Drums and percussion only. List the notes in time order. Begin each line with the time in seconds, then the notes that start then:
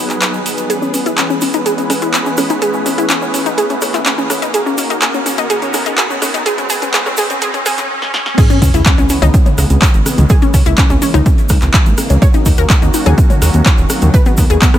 0.10 clap, closed hi-hat, shaker
0.21 clap, closed hi-hat, shaker
0.34 shaker
0.46 open hi-hat, shaker
0.58 closed hi-hat, shaker
0.70 closed hi-hat, shaker
0.82 shaker
0.94 open hi-hat, shaker
1.06 closed hi-hat, shaker
1.18 clap, closed hi-hat, shaker
1.30 shaker
1.41 open hi-hat, shaker
1.53 closed hi-hat, shaker
1.66 closed hi-hat, shaker
1.78 closed hi-hat, shaker
1.90 cross-stick, open hi-hat, shaker
2.02 closed hi-hat, shaker
2.14 clap, closed hi-hat, shaker
2.26 shaker
2.37 cross-stick, open hi-hat, shaker
2.50 closed hi-hat, shaker
2.62 closed hi-hat, shaker
2.73 shaker
2.86 open hi-hat, shaker
2.98 closed hi-hat, shaker
3.10 clap, closed hi-hat, shaker
3.22 shaker
3.34 open hi-hat, shaker
3.46 closed hi-hat, shaker
3.58 closed hi-hat, shaker
3.70 closed hi-hat, shaker
3.81 cross-stick, open hi-hat, shaker
3.94 clap, closed hi-hat, shaker
4.06 clap, closed hi-hat, shaker
4.18 shaker
4.30 cross-stick, open hi-hat, shaker
4.42 closed hi-hat, shaker
4.54 closed hi-hat, shaker
4.66 shaker
4.78 open hi-hat, shaker
4.90 closed hi-hat, shaker
5.02 clap, closed hi-hat, shaker
5.14 shaker
5.26 open hi-hat, shaker
5.38 closed hi-hat, shaker
5.50 closed hi-hat, shaker
5.62 closed hi-hat, shaker
5.74 cross-stick, open hi-hat, shaker
5.86 closed hi-hat, shaker
5.98 clap, closed hi-hat, shaker
6.11 shaker
6.22 cross-stick, open hi-hat, shaker
6.34 closed hi-hat, shaker
6.46 closed hi-hat, shaker
6.58 closed hi-hat, shaker
6.70 open hi-hat, shaker
6.82 closed hi-hat, shaker
6.94 clap, closed hi-hat, shaker
7.06 cross-stick, shaker
7.17 open hi-hat, shaker
7.30 closed hi-hat, shaker
7.42 closed hi-hat, shaker
7.54 closed hi-hat, shaker
7.66 cross-stick, open hi-hat, shaker
7.78 clap, closed hi-hat, shaker
8.02 snare
8.14 snare
8.26 snare
8.38 kick, closed hi-hat, crash, shaker
8.50 closed hi-hat, high conga, shaker
8.62 kick, open hi-hat, shaker
8.74 closed hi-hat, shaker
8.85 kick, clap, closed hi-hat, shaker
8.98 closed hi-hat, high conga, shaker
9.09 open hi-hat, shaker
9.22 closed hi-hat, mid tom, high bongo, shaker
9.34 kick, closed hi-hat, high conga, shaker
9.46 closed hi-hat, mid tom, high bongo, shaker
9.58 cross-stick, open hi-hat, shaker
9.70 closed hi-hat, high conga, shaker
9.82 kick, clap, closed hi-hat, high bongo, shaker
9.94 closed hi-hat, shaker
10.06 cross-stick, open hi-hat, high conga, shaker
10.18 closed hi-hat, mid tom, shaker
10.29 kick, closed hi-hat, shaker
10.42 closed hi-hat, high conga, shaker
10.54 kick, open hi-hat, shaker
10.66 closed hi-hat, shaker
10.77 kick, clap, closed hi-hat, shaker
10.90 closed hi-hat, high conga, shaker
11.02 open hi-hat, shaker
11.14 closed hi-hat, mid tom, high bongo, shaker
11.26 kick, closed hi-hat, high conga, shaker
11.38 closed hi-hat, shaker
11.49 kick, cross-stick, open hi-hat, shaker
11.62 clap, closed hi-hat, high conga, shaker
11.74 kick, clap, closed hi-hat, shaker
11.86 closed hi-hat, shaker
11.98 cross-stick, open hi-hat, high conga, shaker
12.10 closed hi-hat, high bongo, shaker
12.22 kick, closed hi-hat, shaker
12.34 closed hi-hat, high conga, shaker
12.46 kick, open hi-hat, shaker
12.58 closed hi-hat, shaker
12.70 kick, clap, closed hi-hat, shaker
12.82 closed hi-hat, high conga, shaker
12.94 open hi-hat, shaker
13.06 closed hi-hat, mid tom, high bongo, shaker
13.18 kick, closed hi-hat, high conga, shaker
13.30 closed hi-hat, mid tom, high bongo, shaker
13.42 cross-stick, open hi-hat, shaker
13.54 closed hi-hat, high conga, shaker
13.66 kick, clap, closed hi-hat, high bongo, shaker
13.78 closed hi-hat, shaker
13.90 cross-stick, open hi-hat, high conga, shaker
14.02 closed hi-hat, mid tom, shaker
14.14 kick, closed hi-hat, shaker
14.26 closed hi-hat, high conga, shaker
14.37 kick, open hi-hat, shaker
14.50 closed hi-hat, shaker
14.62 kick, clap, closed hi-hat, shaker
14.74 cross-stick, closed hi-hat, high conga, shaker